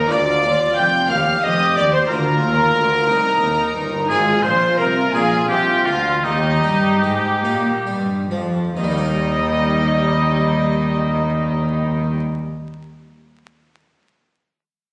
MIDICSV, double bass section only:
0, 0, Header, 1, 2, 480
1, 0, Start_track
1, 0, Key_signature, -3, "major"
1, 0, Tempo, 662983
1, 75, Time_signature, 6, 3, 24, 8
1, 2475, Tempo, 680272
1, 3435, Tempo, 731707
1, 4395, Tempo, 789474
1, 4875, Tempo, 835655
1, 5355, Tempo, 900901
1, 5835, Tempo, 921659
1, 9043, End_track
2, 0, Start_track
2, 0, Title_t, "Double bass section"
2, 0, Program_c, 0, 48
2, 78, Note_on_c, 0, 38, 97
2, 310, Note_off_c, 0, 38, 0
2, 315, Note_on_c, 0, 39, 90
2, 553, Note_off_c, 0, 39, 0
2, 557, Note_on_c, 0, 29, 91
2, 790, Note_off_c, 0, 29, 0
2, 794, Note_on_c, 0, 39, 93
2, 1033, Note_off_c, 0, 39, 0
2, 1039, Note_on_c, 0, 29, 88
2, 1271, Note_off_c, 0, 29, 0
2, 1280, Note_on_c, 0, 39, 92
2, 1512, Note_off_c, 0, 39, 0
2, 1519, Note_on_c, 0, 38, 102
2, 1752, Note_off_c, 0, 38, 0
2, 1761, Note_on_c, 0, 39, 91
2, 1993, Note_off_c, 0, 39, 0
2, 1999, Note_on_c, 0, 38, 93
2, 2232, Note_off_c, 0, 38, 0
2, 2236, Note_on_c, 0, 36, 94
2, 2476, Note_off_c, 0, 36, 0
2, 2479, Note_on_c, 0, 39, 90
2, 2708, Note_off_c, 0, 39, 0
2, 2715, Note_on_c, 0, 31, 96
2, 2946, Note_off_c, 0, 31, 0
2, 2953, Note_on_c, 0, 32, 102
2, 3187, Note_off_c, 0, 32, 0
2, 3193, Note_on_c, 0, 34, 84
2, 3432, Note_off_c, 0, 34, 0
2, 3439, Note_on_c, 0, 36, 86
2, 3665, Note_off_c, 0, 36, 0
2, 3674, Note_on_c, 0, 34, 87
2, 3903, Note_off_c, 0, 34, 0
2, 3912, Note_on_c, 0, 36, 80
2, 4145, Note_off_c, 0, 36, 0
2, 4157, Note_on_c, 0, 38, 81
2, 4396, Note_off_c, 0, 38, 0
2, 4402, Note_on_c, 0, 39, 86
2, 4631, Note_off_c, 0, 39, 0
2, 4638, Note_on_c, 0, 43, 78
2, 4873, Note_off_c, 0, 43, 0
2, 4883, Note_on_c, 0, 44, 83
2, 5115, Note_off_c, 0, 44, 0
2, 5116, Note_on_c, 0, 46, 81
2, 5353, Note_off_c, 0, 46, 0
2, 5360, Note_on_c, 0, 43, 75
2, 5589, Note_off_c, 0, 43, 0
2, 5595, Note_on_c, 0, 41, 75
2, 5832, Note_off_c, 0, 41, 0
2, 5838, Note_on_c, 0, 39, 88
2, 7612, Note_off_c, 0, 39, 0
2, 9043, End_track
0, 0, End_of_file